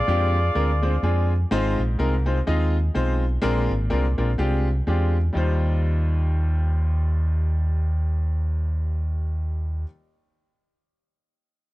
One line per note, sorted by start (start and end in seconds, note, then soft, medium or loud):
0.00 0.31 A#2 medium
0.00 1.27 F4 medium
0.00 1.27 G#4 medium
0.00 1.31 D5 loud
0.08 0.48 F2 medium
0.08 0.35 G#3 medium
0.08 0.35 C4 medium
0.08 0.36 D4 medium
0.08 0.36 F4 medium
0.08 0.36 G4 loud
0.55 0.96 D2 medium
0.55 0.69 G#3 medium
0.55 0.69 C4 medium
0.55 0.69 D4 medium
0.55 0.69 F4 medium
0.55 0.69 A#4 loud
0.83 0.93 G#3 medium
0.83 0.93 C4 medium
0.83 0.93 D4 medium
0.83 0.93 F4 medium
0.83 0.94 C5 medium
1.03 1.44 F2 medium
1.03 1.31 G#3 medium
1.03 1.31 C4 medium
1.03 1.31 D4 medium
1.03 1.31 F4 medium
1.03 1.31 G#4 loud
1.51 1.74 G#1 medium
1.51 2.23 G#2 medium
1.51 1.79 G#3 loud
1.51 1.79 C4 loud
1.51 1.79 D#4 loud
1.51 1.80 F4 loud
1.51 1.80 C5 loud
1.79 1.96 A#1 medium
1.99 2.40 C2 medium
1.99 2.13 G#3 loud
1.99 2.13 C4 medium
1.99 2.13 D#4 medium
1.99 2.13 F4 medium
1.99 2.13 A#4 loud
2.26 2.37 G#3 medium
2.26 2.37 C4 medium
2.26 2.37 D#4 medium
2.26 2.37 F4 medium
2.26 2.37 C5 medium
2.47 2.88 D#2 loud
2.47 2.75 G#3 loud
2.47 2.75 C4 medium
2.47 2.75 D#4 medium
2.47 2.75 F4 medium
2.47 2.75 D#5 loud
2.94 3.36 B1 loud
2.94 3.23 G#3 medium
2.94 3.23 C4 medium
2.94 3.23 D#4 medium
2.94 3.23 F4 medium
2.94 3.23 C5 loud
3.42 3.67 A#1 loud
3.42 4.14 A#2 medium
3.42 3.70 G#3 loud
3.42 3.70 C4 loud
3.42 3.70 D4 loud
3.42 3.71 F4 loud
3.42 3.71 A#4 loud
3.70 3.88 G#1 loud
3.90 4.14 C2 medium
3.90 4.05 G#3 medium
3.90 4.05 C4 medium
3.90 4.05 D4 medium
3.90 4.05 F4 medium
3.90 4.05 A#4 loud
4.18 4.36 A#1 medium
4.18 4.29 G#3 medium
4.18 4.29 C4 medium
4.18 4.29 D4 medium
4.18 4.29 F4 medium
4.18 4.29 A#4 medium
4.38 4.80 C2 loud
4.38 4.67 G#3 medium
4.38 4.67 C4 medium
4.38 4.67 D4 medium
4.38 4.67 F4 medium
4.38 4.67 G4 loud
4.87 5.28 E2 medium
4.87 5.15 G#3 medium
4.87 5.15 C4 medium
4.87 5.15 D4 medium
4.87 5.15 F4 medium
4.87 5.16 G4 medium
5.33 9.83 D#2 medium
5.33 9.84 D#2 loud
5.33 9.81 G3 medium
5.33 9.82 D#4 medium
5.33 9.84 F4 medium
5.37 9.85 C5 medium